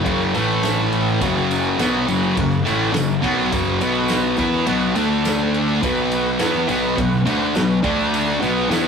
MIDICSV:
0, 0, Header, 1, 5, 480
1, 0, Start_track
1, 0, Tempo, 576369
1, 47, Time_signature, 4, 2, 24, 8
1, 7394, End_track
2, 0, Start_track
2, 0, Title_t, "Transistor combo organ"
2, 0, Program_c, 0, 18
2, 60, Note_on_c, 0, 66, 98
2, 78, Note_on_c, 0, 70, 92
2, 79, Note_on_c, 0, 73, 111
2, 209, Note_off_c, 0, 66, 0
2, 218, Note_off_c, 0, 70, 0
2, 219, Note_off_c, 0, 73, 0
2, 290, Note_on_c, 0, 64, 95
2, 300, Note_on_c, 0, 69, 87
2, 312, Note_on_c, 0, 76, 98
2, 672, Note_off_c, 0, 64, 0
2, 677, Note_off_c, 0, 69, 0
2, 683, Note_off_c, 0, 76, 0
2, 769, Note_on_c, 0, 69, 72
2, 772, Note_on_c, 0, 64, 82
2, 785, Note_on_c, 0, 76, 92
2, 924, Note_off_c, 0, 69, 0
2, 925, Note_off_c, 0, 64, 0
2, 932, Note_off_c, 0, 76, 0
2, 1028, Note_on_c, 0, 70, 79
2, 1029, Note_on_c, 0, 66, 69
2, 1033, Note_on_c, 0, 61, 76
2, 1174, Note_off_c, 0, 66, 0
2, 1174, Note_off_c, 0, 70, 0
2, 1176, Note_off_c, 0, 61, 0
2, 1255, Note_on_c, 0, 61, 105
2, 1266, Note_on_c, 0, 66, 100
2, 1273, Note_on_c, 0, 70, 124
2, 1407, Note_off_c, 0, 61, 0
2, 1413, Note_off_c, 0, 66, 0
2, 1416, Note_off_c, 0, 70, 0
2, 1510, Note_on_c, 0, 61, 98
2, 1516, Note_on_c, 0, 66, 93
2, 1517, Note_on_c, 0, 70, 107
2, 1655, Note_off_c, 0, 61, 0
2, 1658, Note_off_c, 0, 66, 0
2, 1658, Note_off_c, 0, 70, 0
2, 1756, Note_on_c, 0, 66, 70
2, 1758, Note_on_c, 0, 61, 77
2, 1771, Note_on_c, 0, 70, 88
2, 1897, Note_off_c, 0, 66, 0
2, 1898, Note_off_c, 0, 61, 0
2, 1905, Note_off_c, 0, 70, 0
2, 1983, Note_on_c, 0, 61, 99
2, 2001, Note_on_c, 0, 70, 113
2, 2002, Note_on_c, 0, 66, 93
2, 2131, Note_off_c, 0, 61, 0
2, 2140, Note_off_c, 0, 70, 0
2, 2141, Note_off_c, 0, 66, 0
2, 2239, Note_on_c, 0, 61, 88
2, 2252, Note_on_c, 0, 66, 79
2, 2253, Note_on_c, 0, 73, 101
2, 2379, Note_off_c, 0, 61, 0
2, 2386, Note_off_c, 0, 66, 0
2, 2386, Note_off_c, 0, 73, 0
2, 2470, Note_on_c, 0, 61, 79
2, 2470, Note_on_c, 0, 66, 78
2, 2481, Note_on_c, 0, 70, 94
2, 2615, Note_off_c, 0, 61, 0
2, 2615, Note_off_c, 0, 66, 0
2, 2620, Note_off_c, 0, 70, 0
2, 2709, Note_on_c, 0, 66, 84
2, 2711, Note_on_c, 0, 61, 87
2, 2724, Note_on_c, 0, 70, 97
2, 2854, Note_off_c, 0, 66, 0
2, 2855, Note_off_c, 0, 61, 0
2, 2862, Note_off_c, 0, 70, 0
2, 2956, Note_on_c, 0, 61, 73
2, 2962, Note_on_c, 0, 66, 75
2, 2975, Note_on_c, 0, 70, 81
2, 3098, Note_off_c, 0, 61, 0
2, 3101, Note_off_c, 0, 66, 0
2, 3107, Note_off_c, 0, 70, 0
2, 3181, Note_on_c, 0, 59, 90
2, 3193, Note_on_c, 0, 66, 79
2, 3201, Note_on_c, 0, 71, 100
2, 3559, Note_off_c, 0, 59, 0
2, 3565, Note_off_c, 0, 66, 0
2, 3569, Note_off_c, 0, 71, 0
2, 3661, Note_on_c, 0, 61, 88
2, 3663, Note_on_c, 0, 66, 82
2, 3671, Note_on_c, 0, 70, 92
2, 3846, Note_off_c, 0, 61, 0
2, 3848, Note_off_c, 0, 66, 0
2, 3851, Note_off_c, 0, 70, 0
2, 3899, Note_on_c, 0, 66, 90
2, 3903, Note_on_c, 0, 59, 98
2, 3906, Note_on_c, 0, 71, 108
2, 4049, Note_off_c, 0, 66, 0
2, 4051, Note_off_c, 0, 59, 0
2, 4053, Note_off_c, 0, 71, 0
2, 4133, Note_on_c, 0, 57, 94
2, 4138, Note_on_c, 0, 62, 84
2, 4151, Note_on_c, 0, 69, 110
2, 4515, Note_off_c, 0, 57, 0
2, 4517, Note_off_c, 0, 62, 0
2, 4524, Note_off_c, 0, 69, 0
2, 4630, Note_on_c, 0, 57, 85
2, 4637, Note_on_c, 0, 62, 76
2, 4646, Note_on_c, 0, 69, 101
2, 4775, Note_off_c, 0, 57, 0
2, 4778, Note_off_c, 0, 62, 0
2, 4783, Note_off_c, 0, 69, 0
2, 4859, Note_on_c, 0, 59, 75
2, 4869, Note_on_c, 0, 66, 65
2, 4873, Note_on_c, 0, 71, 84
2, 5010, Note_off_c, 0, 59, 0
2, 5014, Note_off_c, 0, 66, 0
2, 5016, Note_off_c, 0, 71, 0
2, 5103, Note_on_c, 0, 66, 96
2, 5116, Note_on_c, 0, 59, 114
2, 5120, Note_on_c, 0, 71, 123
2, 5251, Note_off_c, 0, 66, 0
2, 5258, Note_off_c, 0, 59, 0
2, 5260, Note_off_c, 0, 71, 0
2, 5353, Note_on_c, 0, 66, 91
2, 5354, Note_on_c, 0, 59, 106
2, 5357, Note_on_c, 0, 71, 114
2, 5496, Note_off_c, 0, 59, 0
2, 5496, Note_off_c, 0, 66, 0
2, 5498, Note_off_c, 0, 71, 0
2, 5578, Note_on_c, 0, 59, 77
2, 5593, Note_on_c, 0, 66, 78
2, 5598, Note_on_c, 0, 71, 88
2, 5728, Note_off_c, 0, 59, 0
2, 5736, Note_off_c, 0, 66, 0
2, 5739, Note_off_c, 0, 71, 0
2, 5833, Note_on_c, 0, 59, 94
2, 5839, Note_on_c, 0, 66, 87
2, 5847, Note_on_c, 0, 71, 115
2, 5976, Note_off_c, 0, 59, 0
2, 5979, Note_off_c, 0, 66, 0
2, 5983, Note_off_c, 0, 71, 0
2, 6067, Note_on_c, 0, 59, 90
2, 6074, Note_on_c, 0, 66, 82
2, 6085, Note_on_c, 0, 71, 98
2, 6213, Note_off_c, 0, 59, 0
2, 6216, Note_off_c, 0, 66, 0
2, 6222, Note_off_c, 0, 71, 0
2, 6290, Note_on_c, 0, 59, 83
2, 6297, Note_on_c, 0, 66, 72
2, 6316, Note_on_c, 0, 71, 85
2, 6444, Note_off_c, 0, 59, 0
2, 6447, Note_off_c, 0, 66, 0
2, 6457, Note_off_c, 0, 71, 0
2, 6522, Note_on_c, 0, 62, 89
2, 6527, Note_on_c, 0, 74, 93
2, 6530, Note_on_c, 0, 69, 78
2, 6907, Note_off_c, 0, 62, 0
2, 6910, Note_off_c, 0, 74, 0
2, 6911, Note_off_c, 0, 69, 0
2, 6995, Note_on_c, 0, 66, 87
2, 7008, Note_on_c, 0, 71, 82
2, 7012, Note_on_c, 0, 78, 88
2, 7383, Note_off_c, 0, 66, 0
2, 7389, Note_off_c, 0, 71, 0
2, 7392, Note_off_c, 0, 78, 0
2, 7394, End_track
3, 0, Start_track
3, 0, Title_t, "Distorted electric guitar"
3, 0, Program_c, 1, 30
3, 31, Note_on_c, 1, 42, 87
3, 36, Note_on_c, 1, 49, 89
3, 42, Note_on_c, 1, 54, 94
3, 272, Note_off_c, 1, 42, 0
3, 274, Note_off_c, 1, 49, 0
3, 277, Note_off_c, 1, 54, 0
3, 283, Note_on_c, 1, 45, 75
3, 294, Note_on_c, 1, 52, 78
3, 297, Note_on_c, 1, 57, 88
3, 998, Note_off_c, 1, 45, 0
3, 999, Note_on_c, 1, 42, 84
3, 1003, Note_off_c, 1, 52, 0
3, 1004, Note_on_c, 1, 49, 88
3, 1005, Note_off_c, 1, 57, 0
3, 1015, Note_on_c, 1, 54, 104
3, 1476, Note_off_c, 1, 42, 0
3, 1478, Note_off_c, 1, 49, 0
3, 1478, Note_off_c, 1, 54, 0
3, 1483, Note_on_c, 1, 47, 95
3, 1488, Note_on_c, 1, 54, 91
3, 1496, Note_on_c, 1, 59, 96
3, 1718, Note_off_c, 1, 47, 0
3, 1720, Note_off_c, 1, 54, 0
3, 1721, Note_on_c, 1, 42, 76
3, 1724, Note_off_c, 1, 59, 0
3, 1725, Note_on_c, 1, 49, 86
3, 1730, Note_on_c, 1, 54, 94
3, 1950, Note_off_c, 1, 42, 0
3, 1959, Note_off_c, 1, 49, 0
3, 1960, Note_on_c, 1, 42, 63
3, 1961, Note_off_c, 1, 54, 0
3, 1968, Note_on_c, 1, 49, 69
3, 2156, Note_off_c, 1, 42, 0
3, 2160, Note_off_c, 1, 49, 0
3, 2203, Note_on_c, 1, 45, 87
3, 2210, Note_on_c, 1, 52, 87
3, 2216, Note_on_c, 1, 57, 89
3, 2429, Note_on_c, 1, 42, 62
3, 2432, Note_off_c, 1, 45, 0
3, 2436, Note_on_c, 1, 49, 67
3, 2441, Note_off_c, 1, 52, 0
3, 2445, Note_off_c, 1, 57, 0
3, 2630, Note_off_c, 1, 42, 0
3, 2634, Note_off_c, 1, 49, 0
3, 2680, Note_on_c, 1, 47, 93
3, 2690, Note_on_c, 1, 54, 92
3, 2693, Note_on_c, 1, 59, 104
3, 2917, Note_off_c, 1, 47, 0
3, 2922, Note_off_c, 1, 54, 0
3, 2923, Note_off_c, 1, 59, 0
3, 2928, Note_on_c, 1, 42, 96
3, 2937, Note_on_c, 1, 49, 99
3, 2939, Note_on_c, 1, 54, 113
3, 3161, Note_off_c, 1, 42, 0
3, 3162, Note_off_c, 1, 49, 0
3, 3165, Note_on_c, 1, 47, 87
3, 3166, Note_off_c, 1, 54, 0
3, 3176, Note_on_c, 1, 54, 95
3, 3182, Note_on_c, 1, 59, 99
3, 3637, Note_off_c, 1, 47, 0
3, 3640, Note_on_c, 1, 52, 94
3, 3643, Note_off_c, 1, 59, 0
3, 3645, Note_off_c, 1, 54, 0
3, 3653, Note_on_c, 1, 59, 100
3, 3657, Note_on_c, 1, 64, 108
3, 3877, Note_off_c, 1, 52, 0
3, 3883, Note_off_c, 1, 59, 0
3, 3885, Note_off_c, 1, 64, 0
3, 3888, Note_on_c, 1, 47, 85
3, 3891, Note_on_c, 1, 54, 100
3, 3899, Note_on_c, 1, 59, 102
3, 4121, Note_off_c, 1, 47, 0
3, 4122, Note_off_c, 1, 54, 0
3, 4126, Note_off_c, 1, 59, 0
3, 4127, Note_on_c, 1, 50, 94
3, 4132, Note_on_c, 1, 57, 96
3, 4141, Note_on_c, 1, 62, 96
3, 4840, Note_off_c, 1, 50, 0
3, 4843, Note_off_c, 1, 57, 0
3, 4847, Note_off_c, 1, 62, 0
3, 4851, Note_on_c, 1, 47, 88
3, 4856, Note_on_c, 1, 54, 98
3, 4865, Note_on_c, 1, 59, 101
3, 5322, Note_off_c, 1, 47, 0
3, 5324, Note_off_c, 1, 59, 0
3, 5325, Note_off_c, 1, 54, 0
3, 5326, Note_on_c, 1, 52, 89
3, 5334, Note_on_c, 1, 59, 91
3, 5340, Note_on_c, 1, 64, 100
3, 5559, Note_off_c, 1, 52, 0
3, 5563, Note_off_c, 1, 59, 0
3, 5566, Note_off_c, 1, 64, 0
3, 5568, Note_on_c, 1, 47, 88
3, 5572, Note_on_c, 1, 54, 96
3, 5582, Note_on_c, 1, 59, 108
3, 5795, Note_off_c, 1, 47, 0
3, 5802, Note_off_c, 1, 54, 0
3, 5805, Note_on_c, 1, 47, 66
3, 5807, Note_off_c, 1, 59, 0
3, 5813, Note_on_c, 1, 54, 69
3, 5998, Note_off_c, 1, 47, 0
3, 6002, Note_off_c, 1, 54, 0
3, 6042, Note_on_c, 1, 50, 88
3, 6051, Note_on_c, 1, 57, 83
3, 6056, Note_on_c, 1, 62, 93
3, 6277, Note_off_c, 1, 50, 0
3, 6281, Note_off_c, 1, 57, 0
3, 6284, Note_off_c, 1, 62, 0
3, 6294, Note_on_c, 1, 47, 62
3, 6294, Note_on_c, 1, 54, 71
3, 6482, Note_off_c, 1, 47, 0
3, 6482, Note_off_c, 1, 54, 0
3, 6517, Note_on_c, 1, 50, 84
3, 6523, Note_on_c, 1, 57, 96
3, 6530, Note_on_c, 1, 62, 104
3, 6993, Note_off_c, 1, 50, 0
3, 6996, Note_off_c, 1, 57, 0
3, 6997, Note_on_c, 1, 47, 84
3, 7000, Note_off_c, 1, 62, 0
3, 7006, Note_on_c, 1, 54, 86
3, 7014, Note_on_c, 1, 59, 103
3, 7230, Note_off_c, 1, 59, 0
3, 7231, Note_off_c, 1, 47, 0
3, 7234, Note_on_c, 1, 52, 87
3, 7237, Note_off_c, 1, 54, 0
3, 7240, Note_on_c, 1, 59, 89
3, 7247, Note_on_c, 1, 64, 93
3, 7394, Note_off_c, 1, 52, 0
3, 7394, Note_off_c, 1, 59, 0
3, 7394, Note_off_c, 1, 64, 0
3, 7394, End_track
4, 0, Start_track
4, 0, Title_t, "Fingered electric bass"
4, 0, Program_c, 2, 33
4, 49, Note_on_c, 2, 30, 88
4, 271, Note_off_c, 2, 30, 0
4, 287, Note_on_c, 2, 33, 86
4, 974, Note_off_c, 2, 33, 0
4, 1006, Note_on_c, 2, 30, 92
4, 1453, Note_off_c, 2, 30, 0
4, 1492, Note_on_c, 2, 35, 94
4, 1713, Note_off_c, 2, 35, 0
4, 1734, Note_on_c, 2, 30, 84
4, 1954, Note_off_c, 2, 30, 0
4, 1977, Note_on_c, 2, 30, 75
4, 2196, Note_off_c, 2, 30, 0
4, 2218, Note_on_c, 2, 33, 88
4, 2437, Note_off_c, 2, 33, 0
4, 2459, Note_on_c, 2, 30, 84
4, 2677, Note_off_c, 2, 30, 0
4, 2699, Note_on_c, 2, 35, 91
4, 2917, Note_off_c, 2, 35, 0
4, 2938, Note_on_c, 2, 30, 99
4, 3156, Note_off_c, 2, 30, 0
4, 3173, Note_on_c, 2, 35, 96
4, 3617, Note_off_c, 2, 35, 0
4, 3653, Note_on_c, 2, 40, 85
4, 3874, Note_off_c, 2, 40, 0
4, 3889, Note_on_c, 2, 35, 96
4, 4112, Note_off_c, 2, 35, 0
4, 4125, Note_on_c, 2, 38, 85
4, 4813, Note_off_c, 2, 38, 0
4, 4853, Note_on_c, 2, 35, 98
4, 5297, Note_off_c, 2, 35, 0
4, 5334, Note_on_c, 2, 40, 93
4, 5554, Note_off_c, 2, 40, 0
4, 5564, Note_on_c, 2, 35, 88
4, 5788, Note_off_c, 2, 35, 0
4, 5807, Note_on_c, 2, 35, 75
4, 6030, Note_off_c, 2, 35, 0
4, 6037, Note_on_c, 2, 38, 79
4, 6264, Note_off_c, 2, 38, 0
4, 6285, Note_on_c, 2, 35, 73
4, 6508, Note_off_c, 2, 35, 0
4, 6530, Note_on_c, 2, 38, 93
4, 6973, Note_off_c, 2, 38, 0
4, 7009, Note_on_c, 2, 35, 93
4, 7230, Note_off_c, 2, 35, 0
4, 7242, Note_on_c, 2, 40, 95
4, 7394, Note_off_c, 2, 40, 0
4, 7394, End_track
5, 0, Start_track
5, 0, Title_t, "Drums"
5, 47, Note_on_c, 9, 51, 88
5, 50, Note_on_c, 9, 36, 117
5, 131, Note_off_c, 9, 51, 0
5, 133, Note_off_c, 9, 36, 0
5, 179, Note_on_c, 9, 54, 29
5, 262, Note_off_c, 9, 54, 0
5, 287, Note_on_c, 9, 51, 68
5, 294, Note_on_c, 9, 54, 71
5, 371, Note_off_c, 9, 51, 0
5, 377, Note_off_c, 9, 54, 0
5, 424, Note_on_c, 9, 54, 28
5, 508, Note_off_c, 9, 54, 0
5, 525, Note_on_c, 9, 51, 84
5, 528, Note_on_c, 9, 38, 100
5, 541, Note_on_c, 9, 54, 99
5, 609, Note_off_c, 9, 51, 0
5, 611, Note_off_c, 9, 38, 0
5, 624, Note_off_c, 9, 54, 0
5, 665, Note_on_c, 9, 54, 28
5, 748, Note_off_c, 9, 54, 0
5, 771, Note_on_c, 9, 51, 68
5, 781, Note_on_c, 9, 54, 27
5, 854, Note_off_c, 9, 51, 0
5, 864, Note_off_c, 9, 54, 0
5, 900, Note_on_c, 9, 54, 27
5, 984, Note_off_c, 9, 54, 0
5, 1009, Note_on_c, 9, 36, 106
5, 1009, Note_on_c, 9, 54, 72
5, 1011, Note_on_c, 9, 51, 96
5, 1092, Note_off_c, 9, 36, 0
5, 1092, Note_off_c, 9, 54, 0
5, 1094, Note_off_c, 9, 51, 0
5, 1137, Note_on_c, 9, 54, 29
5, 1220, Note_off_c, 9, 54, 0
5, 1255, Note_on_c, 9, 54, 77
5, 1258, Note_on_c, 9, 51, 72
5, 1338, Note_off_c, 9, 54, 0
5, 1341, Note_off_c, 9, 51, 0
5, 1493, Note_on_c, 9, 51, 91
5, 1495, Note_on_c, 9, 38, 102
5, 1496, Note_on_c, 9, 54, 87
5, 1576, Note_off_c, 9, 51, 0
5, 1579, Note_off_c, 9, 38, 0
5, 1579, Note_off_c, 9, 54, 0
5, 1734, Note_on_c, 9, 51, 72
5, 1739, Note_on_c, 9, 54, 66
5, 1818, Note_off_c, 9, 51, 0
5, 1823, Note_off_c, 9, 54, 0
5, 1860, Note_on_c, 9, 54, 29
5, 1943, Note_off_c, 9, 54, 0
5, 1973, Note_on_c, 9, 36, 118
5, 1974, Note_on_c, 9, 51, 108
5, 2056, Note_off_c, 9, 36, 0
5, 2058, Note_off_c, 9, 51, 0
5, 2100, Note_on_c, 9, 54, 28
5, 2183, Note_off_c, 9, 54, 0
5, 2220, Note_on_c, 9, 51, 77
5, 2230, Note_on_c, 9, 54, 77
5, 2304, Note_off_c, 9, 51, 0
5, 2314, Note_off_c, 9, 54, 0
5, 2352, Note_on_c, 9, 54, 29
5, 2435, Note_off_c, 9, 54, 0
5, 2448, Note_on_c, 9, 51, 99
5, 2451, Note_on_c, 9, 38, 108
5, 2470, Note_on_c, 9, 54, 95
5, 2532, Note_off_c, 9, 51, 0
5, 2534, Note_off_c, 9, 38, 0
5, 2553, Note_off_c, 9, 54, 0
5, 2591, Note_on_c, 9, 54, 28
5, 2674, Note_off_c, 9, 54, 0
5, 2696, Note_on_c, 9, 36, 76
5, 2697, Note_on_c, 9, 51, 79
5, 2698, Note_on_c, 9, 54, 28
5, 2779, Note_off_c, 9, 36, 0
5, 2781, Note_off_c, 9, 51, 0
5, 2781, Note_off_c, 9, 54, 0
5, 2830, Note_on_c, 9, 54, 29
5, 2913, Note_off_c, 9, 54, 0
5, 2934, Note_on_c, 9, 51, 99
5, 2936, Note_on_c, 9, 36, 120
5, 2936, Note_on_c, 9, 54, 72
5, 3018, Note_off_c, 9, 51, 0
5, 3019, Note_off_c, 9, 36, 0
5, 3019, Note_off_c, 9, 54, 0
5, 3058, Note_on_c, 9, 54, 28
5, 3141, Note_off_c, 9, 54, 0
5, 3171, Note_on_c, 9, 54, 73
5, 3175, Note_on_c, 9, 51, 72
5, 3254, Note_off_c, 9, 54, 0
5, 3259, Note_off_c, 9, 51, 0
5, 3286, Note_on_c, 9, 54, 27
5, 3369, Note_off_c, 9, 54, 0
5, 3399, Note_on_c, 9, 54, 90
5, 3411, Note_on_c, 9, 51, 86
5, 3413, Note_on_c, 9, 38, 104
5, 3482, Note_off_c, 9, 54, 0
5, 3494, Note_off_c, 9, 51, 0
5, 3497, Note_off_c, 9, 38, 0
5, 3638, Note_on_c, 9, 54, 69
5, 3651, Note_on_c, 9, 51, 62
5, 3653, Note_on_c, 9, 36, 100
5, 3721, Note_off_c, 9, 54, 0
5, 3734, Note_off_c, 9, 51, 0
5, 3736, Note_off_c, 9, 36, 0
5, 3773, Note_on_c, 9, 54, 30
5, 3856, Note_off_c, 9, 54, 0
5, 3885, Note_on_c, 9, 51, 102
5, 3968, Note_off_c, 9, 51, 0
5, 4008, Note_on_c, 9, 54, 27
5, 4091, Note_off_c, 9, 54, 0
5, 4126, Note_on_c, 9, 54, 76
5, 4128, Note_on_c, 9, 51, 69
5, 4209, Note_off_c, 9, 54, 0
5, 4211, Note_off_c, 9, 51, 0
5, 4265, Note_on_c, 9, 54, 28
5, 4348, Note_off_c, 9, 54, 0
5, 4372, Note_on_c, 9, 54, 94
5, 4375, Note_on_c, 9, 51, 88
5, 4377, Note_on_c, 9, 38, 100
5, 4455, Note_off_c, 9, 54, 0
5, 4458, Note_off_c, 9, 51, 0
5, 4461, Note_off_c, 9, 38, 0
5, 4617, Note_on_c, 9, 51, 68
5, 4618, Note_on_c, 9, 54, 27
5, 4700, Note_off_c, 9, 51, 0
5, 4701, Note_off_c, 9, 54, 0
5, 4731, Note_on_c, 9, 54, 27
5, 4814, Note_off_c, 9, 54, 0
5, 4854, Note_on_c, 9, 54, 70
5, 4855, Note_on_c, 9, 36, 114
5, 4855, Note_on_c, 9, 51, 84
5, 4937, Note_off_c, 9, 54, 0
5, 4938, Note_off_c, 9, 36, 0
5, 4939, Note_off_c, 9, 51, 0
5, 4978, Note_on_c, 9, 54, 29
5, 5061, Note_off_c, 9, 54, 0
5, 5091, Note_on_c, 9, 54, 72
5, 5092, Note_on_c, 9, 51, 73
5, 5175, Note_off_c, 9, 54, 0
5, 5176, Note_off_c, 9, 51, 0
5, 5214, Note_on_c, 9, 54, 25
5, 5297, Note_off_c, 9, 54, 0
5, 5324, Note_on_c, 9, 54, 86
5, 5326, Note_on_c, 9, 51, 95
5, 5329, Note_on_c, 9, 38, 107
5, 5407, Note_off_c, 9, 54, 0
5, 5410, Note_off_c, 9, 51, 0
5, 5412, Note_off_c, 9, 38, 0
5, 5567, Note_on_c, 9, 51, 73
5, 5569, Note_on_c, 9, 54, 70
5, 5650, Note_off_c, 9, 51, 0
5, 5652, Note_off_c, 9, 54, 0
5, 5691, Note_on_c, 9, 54, 29
5, 5774, Note_off_c, 9, 54, 0
5, 5812, Note_on_c, 9, 36, 119
5, 5814, Note_on_c, 9, 51, 102
5, 5818, Note_on_c, 9, 54, 27
5, 5895, Note_off_c, 9, 36, 0
5, 5897, Note_off_c, 9, 51, 0
5, 5902, Note_off_c, 9, 54, 0
5, 5932, Note_on_c, 9, 54, 27
5, 6015, Note_off_c, 9, 54, 0
5, 6050, Note_on_c, 9, 51, 73
5, 6053, Note_on_c, 9, 54, 67
5, 6133, Note_off_c, 9, 51, 0
5, 6136, Note_off_c, 9, 54, 0
5, 6173, Note_on_c, 9, 54, 25
5, 6256, Note_off_c, 9, 54, 0
5, 6289, Note_on_c, 9, 54, 84
5, 6299, Note_on_c, 9, 51, 95
5, 6302, Note_on_c, 9, 38, 105
5, 6372, Note_off_c, 9, 54, 0
5, 6382, Note_off_c, 9, 51, 0
5, 6385, Note_off_c, 9, 38, 0
5, 6418, Note_on_c, 9, 54, 27
5, 6501, Note_off_c, 9, 54, 0
5, 6527, Note_on_c, 9, 51, 68
5, 6532, Note_on_c, 9, 36, 107
5, 6541, Note_on_c, 9, 54, 27
5, 6611, Note_off_c, 9, 51, 0
5, 6615, Note_off_c, 9, 36, 0
5, 6625, Note_off_c, 9, 54, 0
5, 6666, Note_on_c, 9, 54, 26
5, 6749, Note_off_c, 9, 54, 0
5, 6777, Note_on_c, 9, 51, 96
5, 6786, Note_on_c, 9, 54, 68
5, 6860, Note_off_c, 9, 51, 0
5, 6869, Note_off_c, 9, 54, 0
5, 7015, Note_on_c, 9, 51, 74
5, 7027, Note_on_c, 9, 54, 66
5, 7099, Note_off_c, 9, 51, 0
5, 7110, Note_off_c, 9, 54, 0
5, 7148, Note_on_c, 9, 54, 25
5, 7231, Note_off_c, 9, 54, 0
5, 7256, Note_on_c, 9, 51, 94
5, 7259, Note_on_c, 9, 38, 107
5, 7262, Note_on_c, 9, 54, 83
5, 7340, Note_off_c, 9, 51, 0
5, 7342, Note_off_c, 9, 38, 0
5, 7345, Note_off_c, 9, 54, 0
5, 7394, End_track
0, 0, End_of_file